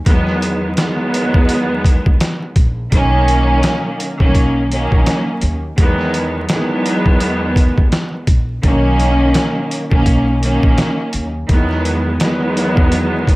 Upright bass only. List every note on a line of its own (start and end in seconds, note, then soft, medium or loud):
0.07 0.74 E2 loud
1.34 2.01 E2 medium
2.06 2.20 D#2 medium
2.56 2.89 A#1 medium
2.92 3.60 B1 loud
4.20 4.87 B1 medium
4.92 5.06 A#1 medium
5.43 5.75 D#2 medium
5.78 6.45 E2 loud
7.06 7.73 E2 medium
7.78 7.92 D#2 medium
8.28 8.60 A#1 medium
8.64 9.31 B1 loud
9.92 10.59 B1 medium
10.64 10.77 A#1 medium
11.14 11.46 D#2 medium
11.49 12.17 E2 loud
12.77 13.36 E2 medium